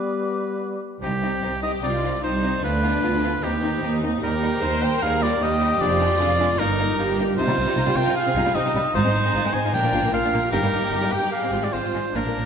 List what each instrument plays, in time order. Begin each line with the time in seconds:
Already playing: french horn section G3 B3, bassoon G3, oboe B4, flute D6
1.02 double bass section C2, cello section C2, violin section C4 D#4, oboe G4
1.23 violin section C4 D#4
1.43 double bass section C2, cello section C2, violin section C4 D#4
1.63 violin section C4 D#4 G4, oboe D#5
1.83 cello section C2, double bass section C2, violin section C4 D#4 F4, viola section F4, oboe D5
2.04 violin section C4 D#4
2.23 cello section C2, double bass section C2, violin section C4 D#4, viola section D#4, oboe C5
2.43 violin section C4 D#4
2.62 cello section D2, double bass section D2, violin section B3 D4 F4, viola section D4, oboe B4
2.83 violin section B3 F4
3.03 double bass section D2, cello section D2, violin section B3 F4, viola section F4
3.23 violin section B3 F4
3.43 cello section D#2, double bass section D#2, violin section C4 D#4, viola section D#4, oboe G4
3.62 violin section C4 D#4
3.82 cello section D#2, double bass section D#2, violin section C4 D#4
4.02 violin section C4 D#4
4.22 double bass section D#2, cello section D#2, violin section G3 D#4, viola section G4, oboe A#4
4.42 violin section G3 D#4
4.62 cello section D#2, double bass section D#2, violin section G3 D#4, viola section C5
4.82 violin section G3 D#4 A#4, oboe G5
5.02 double bass section D#2, cello section D#2, violin section G3 D#4 G#4, viola section A#4, oboe F5
5.21 violin section G3 D#4 F4, oboe D5
5.41 double bass section D#2, cello section D#2, violin section G3 D#4 G4, viola section G4, oboe D#5
5.61 violin section G3 D#4
5.81 double bass section F1, cello section F2, violin section G#3 D4 F4, oboe D5
6.01 violin section G#3 D4
6.19 double bass section F1, cello section F2, violin section G#3 D4, viola section F4
6.39 violin section G#3 D4
6.59 double bass section G1, cello section G2, violin section A#3 D#4, viola section D#4, oboe A#4
6.79 violin section A#3 D#4
6.98 double bass section G1, cello section G2, violin section A#3 D#4, viola section G4
7.18 violin section A#3 D#4
7.38 double bass section C2, cello section C3, violin section D#4, viola section F4, oboe C5
7.48 cello section C3, violin section G3
7.57 double bass section C2, cello section C3, violin section C4
7.67 cello section C3, violin section G3
7.76 double bass section C2, cello section C3, violin section D#4
7.86 cello section C3, violin section G3
7.96 double bass section C2, cello section C3, violin section C4 A#4, oboe G5
8.06 cello section C3, violin section D#4
8.16 violin section G#4, oboe F5
8.26 cello section C3, violin section C4
8.36 double bass section C2, cello section C3, violin section D#4
8.45 cello section C3, violin section G3
8.55 double bass section C2, cello section C3, violin section C4 G4, viola section D#4, oboe D#5
8.66 cello section C3, violin section D#4
8.75 double bass section C2, cello section C3, violin section G3
8.94 double bass section G#1, cello section G#2, viola section D#4, violin section D#4 F4, oboe C5
9.05 cello section G#2, violin section G#3 C4
9.15 double bass section G#1, cello section G#2, violin section C4 D#4
9.25 cello section G#2, violin section G#3 C4
9.34 double bass section G#1, cello section G#2, violin section D#4 F4
9.44 cello section G#2, violin section G#3 C4
9.53 double bass section G#1, cello section G#2, violin section C4 D#4 C5, oboe G#5
9.64 cello section G#2, violin section D#4 F4
9.73 timpani A#2, viola section D4, violin section A#4, oboe G5
9.84 cello section A#2, violin section A#3 D4
9.93 double bass section A#1, cello section A#2, violin section D4 F4
10.03 cello section A#2, violin section A#3
10.12 double bass section A#1, cello section A#2, violin section A#3 D4 A#4, viola section F4, oboe F5
10.23 cello section A#2, violin section D4 F4
10.33 double bass section A#1, cello section A#2, violin section A#3
10.52 double bass section G1, cello section G2, violin section D#4 G4, viola section G4, oboe A#4
10.63 cello section G2, violin section G3 A#3
10.73 double bass section G1, cello section G2, violin section A#3 D#4
10.82 cello section G2, violin section G3 A#3
10.92 double bass section G1, cello section G2, violin section D#4 G4
11.02 cello section G2, violin section G3 A#3
11.12 double bass section G1, cello section G2, violin section A#3 D#4 A#4, oboe G5
11.22 cello section G2, violin section D#4 G4
11.32 violin section G#4, oboe F5
11.42 cello section G#2, violin section G#3 C4
11.52 double bass section G#1, cello section G#2, violin section C4 F4
11.62 cello section G#2, violin section G#3 F4, oboe D5
11.73 double bass section G#1, cello section G#2, violin section G#3 C4 F4, viola section F4, oboe C5
11.83 cello section G#2, violin section C4 F4
11.94 double bass section G#1, cello section G#2, violin section G#3
12.15 double bass section A#1, cello section A#2, viola section D4, violin section D4 F4, oboe A#4
12.26 cello section A#2, violin section A#3
12.36 double bass section A#1, cello section A#2, violin section A#3 D4